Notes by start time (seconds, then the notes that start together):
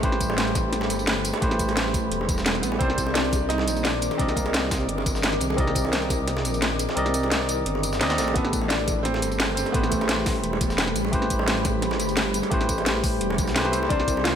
Already playing: G3 A3 G4 A4 B4 C5 B5
0.02 A1 A3 G4 B4 C5, kick, closed hi-hat
0.12 snare
0.21 kick, closed hi-hat, tambourine
0.30 high bongo
0.38 snare, closed hi-hat, tambourine
0.47 closed hi-hat
0.55 kick, snare, closed hi-hat, tambourine, high bongo
0.73 snare, closed hi-hat
0.81 snare, high bongo
0.90 G1, closed hi-hat, tambourine
0.99 closed hi-hat, tambourine
1.07 snare, closed hi-hat, tambourine, high bongo
1.25 closed hi-hat, tambourine
1.33 closed hi-hat, high bongo
1.40 A1 A3 G4 B4 C5, kick, closed hi-hat
1.51 snare, closed hi-hat
1.59 kick, closed hi-hat, tambourine
1.69 closed hi-hat, high bongo
1.77 snare, closed hi-hat, tambourine
1.86 snare
1.94 kick, closed hi-hat, tambourine
2.11 E1, closed hi-hat
2.21 high bongo
2.29 kick, closed hi-hat, tambourine
2.38 snare, tambourine
2.46 snare, closed hi-hat, tambourine, high bongo
2.55 C4, snare, closed hi-hat
2.62 A1 B3, closed hi-hat, tambourine
2.72 high bongo
2.79 C2 D#3 C4 A#4 C5 D5 D6, kick, closed hi-hat
2.90 snare
2.98 kick, closed hi-hat, tambourine
3.06 high bongo
3.14 D4, snare, closed hi-hat, tambourine
3.25 closed hi-hat
3.32 kick, closed hi-hat, tambourine, high bongo
3.49 D#4, snare, closed hi-hat
3.58 snare, high bongo
3.67 A#1, closed hi-hat, tambourine
3.77 closed hi-hat, tambourine
3.83 D4, snare, closed hi-hat, tambourine, high bongo
4.02 closed hi-hat, tambourine
4.11 closed hi-hat, high bongo
4.18 C2 C4 D4 A#4 D5 D#5, kick, closed hi-hat
4.28 snare, closed hi-hat
4.35 A#3, kick, closed hi-hat, tambourine
4.46 closed hi-hat, high bongo
4.54 snare, closed hi-hat, tambourine
4.63 snare
4.71 kick, snare, closed hi-hat, tambourine
4.80 closed hi-hat
4.88 G1, closed hi-hat
4.98 high bongo
5.06 kick, closed hi-hat, tambourine
5.15 snare, tambourine
5.23 snare, closed hi-hat, tambourine, high bongo
5.32 snare, closed hi-hat
5.41 C2, closed hi-hat, tambourine
5.50 high bongo
5.57 C2 C4 A#4 D5 D#5, kick, closed hi-hat
5.67 snare
5.75 kick, closed hi-hat, tambourine
5.85 high bongo
5.93 snare, closed hi-hat, tambourine
6.02 closed hi-hat
6.10 kick, snare, closed hi-hat, tambourine, high bongo
6.28 snare, closed hi-hat
6.37 snare, high bongo
6.45 A#1, closed hi-hat, tambourine
6.54 closed hi-hat, tambourine
6.62 snare, closed hi-hat, tambourine, high bongo
6.79 closed hi-hat, tambourine
6.89 snare, high bongo
6.95 C2 C4 A#4 D5 D#5, closed hi-hat
7.06 snare, closed hi-hat
7.14 closed hi-hat, tambourine
7.23 closed hi-hat, high bongo
7.32 snare, closed hi-hat, tambourine
7.41 snare
7.49 closed hi-hat, tambourine
7.66 G1, closed hi-hat
7.75 high bongo
7.83 closed hi-hat, tambourine
7.93 snare, tambourine
8.00 D#2 C4 A#4 D5 D#5, snare, closed hi-hat, tambourine, high bongo
8.09 C4 A#4 D5 D#5, snare, closed hi-hat
8.17 A#1 A3, snare, closed hi-hat, tambourine
8.28 closed hi-hat, high bongo
8.34 A1 G3 A3 B3 G4 A4 B4 B5, kick, closed hi-hat
8.45 snare
8.53 kick, closed hi-hat, tambourine
8.61 high bongo
8.68 D4, snare, closed hi-hat, tambourine
8.79 closed hi-hat
8.87 kick, closed hi-hat, tambourine, high bongo
9.03 C4, snare, closed hi-hat
9.14 snare, high bongo
9.22 G1, closed hi-hat, tambourine
9.32 closed hi-hat, tambourine
9.40 snare, closed hi-hat, tambourine, high bongo
9.55 C4, closed hi-hat, tambourine
9.66 closed hi-hat, high bongo
9.72 A1 A3 B3 G4 B4 C5, kick, closed hi-hat
9.83 snare, closed hi-hat
9.89 A3, kick, closed hi-hat, tambourine
10.01 closed hi-hat, high bongo
10.09 snare, closed hi-hat, tambourine
10.18 snare
10.26 kick, snare, closed hi-hat, open hi-hat, tambourine
10.36 closed hi-hat
10.43 E1, closed hi-hat
10.53 high bongo
10.61 kick, closed hi-hat, tambourine
10.70 snare, tambourine
10.78 snare, closed hi-hat, tambourine, high bongo
10.87 snare, closed hi-hat
10.95 A1, closed hi-hat, tambourine
11.05 high bongo
11.11 A1 A3 G4 B4 C5, kick, closed hi-hat
11.22 snare
11.30 kick, closed hi-hat, tambourine
11.39 high bongo
11.48 snare, closed hi-hat, tambourine
11.57 closed hi-hat
11.65 kick, snare, closed hi-hat, tambourine, high bongo
11.82 snare, closed hi-hat
11.91 snare, high bongo
11.99 G1, closed hi-hat, tambourine
12.09 closed hi-hat, tambourine
12.17 snare, closed hi-hat, tambourine, high bongo
12.34 closed hi-hat, tambourine
12.43 closed hi-hat, high bongo
12.50 A1 A3 G4 B4 C5, kick, closed hi-hat
12.61 snare, closed hi-hat
12.69 kick, closed hi-hat, tambourine
12.78 closed hi-hat, high bongo
12.86 snare, closed hi-hat, tambourine
12.95 snare
13.04 kick, closed hi-hat, open hi-hat, tambourine
13.21 E1, closed hi-hat
13.30 high bongo
13.38 B1, kick, closed hi-hat, tambourine
13.47 snare, tambourine
13.55 A3 G4 B4 C5, snare, closed hi-hat, tambourine, high bongo
13.64 A3 G4 B4 C5, snare, closed hi-hat
13.72 C2 C4, closed hi-hat, tambourine
13.83 high bongo
13.89 C2 D#3 C4 D4 A#4 C5 D5 D6, kick, closed hi-hat
14.00 snare
14.08 kick, closed hi-hat, tambourine
14.17 high bongo
14.24 F4, snare, closed hi-hat, tambourine